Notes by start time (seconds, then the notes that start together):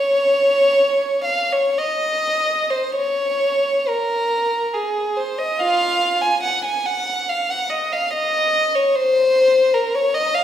Already playing: C#5
1.24 F5
1.52 C#5
1.78 D#5
2.70 C5
2.95 C#5
3.88 A#4
4.73 G#4
5.17 C5
5.38 D#5
5.59 F4 F5
6.21 G#5
6.43 F#5
6.65 G#5
6.86 F#5
7.29 F5
7.50 F#5
7.70 D#5
7.92 F5
8.13 D#5
8.75 C#5
8.96 C5
9.74 A#4
9.95 C#5
10.14 D#5
10.35 F5